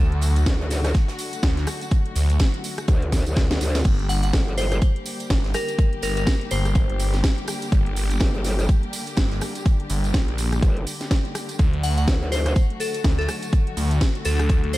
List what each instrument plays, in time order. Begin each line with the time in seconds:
Already playing: detuned saw bass D2, string section D3 F#3 A3 F#4
0.12 closed hi-hat
0.21 closed hi-hat, open hi-hat, tambourine
0.36 closed hi-hat, tambourine
0.46 wobble bass D2, kick, snare, closed hi-hat, tambourine
0.61 closed hi-hat
0.70 snare, closed hi-hat, open hi-hat, tambourine
0.84 cross-stick, snare, closed hi-hat, tambourine
0.94 kick, snare, closed hi-hat, tambourine
1.08 snare, closed hi-hat
1.19 closed hi-hat, open hi-hat, tambourine
1.33 closed hi-hat, tambourine
1.43 detuned saw bass D2, kick, snare, closed hi-hat, tambourine
1.57 snare, closed hi-hat
1.67 cross-stick, closed hi-hat, open hi-hat, tambourine
1.81 closed hi-hat, tambourine
1.91 kick, closed hi-hat, tambourine
2.06 closed hi-hat
2.16 detuned saw bass D2, closed hi-hat, open hi-hat, tambourine
2.30 closed hi-hat, tambourine
2.39 kick, snare, closed hi-hat, tambourine
2.54 closed hi-hat
2.64 closed hi-hat, open hi-hat, tambourine
2.78 cross-stick, closed hi-hat, tambourine
2.88 wobble bass D2, kick, closed hi-hat, tambourine
3.02 closed hi-hat
3.12 kick, snare, open hi-hat, tambourine
3.26 wobble bass D2, closed hi-hat, tambourine
3.36 kick, snare, closed hi-hat, tambourine
3.51 snare, closed hi-hat
3.61 wobble bass D2, snare, closed hi-hat, open hi-hat, tambourine
3.75 snare, closed hi-hat, tambourine
3.84 detuned saw bass G1, string section D3 G3 A#3 G4, kick, closed hi-hat, tambourine, crash
3.99 closed hi-hat
4.09 synth bell F#5, closed hi-hat, open hi-hat, tambourine
4.23 synth bell F#5, closed hi-hat, tambourine
4.33 wobble bass G1, kick, snare, closed hi-hat, tambourine
4.48 closed hi-hat
4.58 synth bell C5, snare, closed hi-hat, open hi-hat, tambourine
4.72 synth bell C5, cross-stick, closed hi-hat, tambourine
4.82 kick, closed hi-hat, tambourine
4.96 closed hi-hat
5.06 closed hi-hat, open hi-hat, tambourine
5.20 closed hi-hat, tambourine
5.30 detuned saw bass G1, kick, snare, closed hi-hat, tambourine
5.44 snare, closed hi-hat
5.54 synth bell A#4, cross-stick, closed hi-hat, open hi-hat, tambourine
5.68 closed hi-hat, tambourine
5.78 kick, closed hi-hat, tambourine
5.93 closed hi-hat
6.02 detuned saw bass G1, synth bell A#4, closed hi-hat, open hi-hat, tambourine
6.17 synth bell A#4, closed hi-hat, tambourine
6.27 kick, snare, closed hi-hat, tambourine
6.41 closed hi-hat
6.51 detuned saw bass G1, synth bell C5, closed hi-hat, open hi-hat, tambourine
6.65 cross-stick, closed hi-hat, tambourine
6.75 kick, closed hi-hat, tambourine
6.89 detuned saw bass G1, closed hi-hat
6.99 closed hi-hat, open hi-hat, tambourine
7.14 snare, closed hi-hat, tambourine
7.24 kick, snare, closed hi-hat, tambourine
7.38 closed hi-hat
7.48 cross-stick, closed hi-hat, open hi-hat, tambourine
7.62 closed hi-hat, tambourine
7.72 detuned saw bass G1, kick, closed hi-hat, tambourine
7.86 closed hi-hat
7.96 closed hi-hat, open hi-hat, tambourine
8.11 closed hi-hat, tambourine
8.20 wobble bass G1, kick, snare, closed hi-hat, tambourine
8.34 closed hi-hat
8.44 snare, closed hi-hat, open hi-hat, tambourine
8.59 cross-stick, closed hi-hat, tambourine
8.69 kick, closed hi-hat, tambourine
8.83 closed hi-hat
8.93 closed hi-hat, open hi-hat, tambourine
9.06 closed hi-hat, tambourine
9.16 detuned saw bass G1, kick, snare, closed hi-hat, tambourine
9.31 snare, closed hi-hat
9.41 cross-stick, closed hi-hat, open hi-hat, tambourine
9.55 closed hi-hat, tambourine
9.65 kick, closed hi-hat, tambourine
9.80 closed hi-hat
9.90 detuned saw bass G1, closed hi-hat, open hi-hat, tambourine
10.04 closed hi-hat, tambourine
10.14 detuned saw bass A#1, kick, snare, closed hi-hat, tambourine
10.28 closed hi-hat
10.38 closed hi-hat, open hi-hat, tambourine
10.52 cross-stick, closed hi-hat, tambourine
10.62 wobble bass G1, kick, closed hi-hat, tambourine
10.77 closed hi-hat
10.87 closed hi-hat, open hi-hat, tambourine
11.01 snare, closed hi-hat, tambourine
11.11 kick, snare, closed hi-hat, tambourine
11.25 closed hi-hat
11.35 cross-stick, closed hi-hat, open hi-hat, tambourine
11.49 closed hi-hat, tambourine
11.59 detuned saw bass D2, string section F#3 A3 F#4, kick, closed hi-hat, tambourine
11.73 closed hi-hat
11.83 synth bell F#5, closed hi-hat, open hi-hat, tambourine
11.97 synth bell F#5, closed hi-hat, tambourine
12.08 wobble bass D2, kick, snare, closed hi-hat
12.22 closed hi-hat
12.32 synth bell C5, snare, closed hi-hat, open hi-hat, tambourine
12.46 synth bell C5, cross-stick, closed hi-hat, tambourine
12.56 kick, closed hi-hat, tambourine
12.70 closed hi-hat
12.80 synth bell A4, closed hi-hat, open hi-hat, tambourine
12.94 closed hi-hat, tambourine
13.04 detuned saw bass D2, kick, snare, closed hi-hat
13.19 synth bell A4, snare, closed hi-hat
13.28 cross-stick, closed hi-hat, open hi-hat, tambourine
13.42 closed hi-hat, tambourine
13.53 kick, closed hi-hat
13.67 closed hi-hat
13.77 detuned saw bass D2, closed hi-hat, open hi-hat, tambourine
13.91 closed hi-hat, tambourine
14.01 kick, snare, closed hi-hat, tambourine
14.15 closed hi-hat
14.25 detuned saw bass D2, synth bell A4, closed hi-hat, open hi-hat, tambourine
14.39 cross-stick, closed hi-hat, tambourine
14.49 kick, closed hi-hat, tambourine
14.64 detuned saw bass D2, closed hi-hat
14.73 synth bell C5, closed hi-hat, open hi-hat, tambourine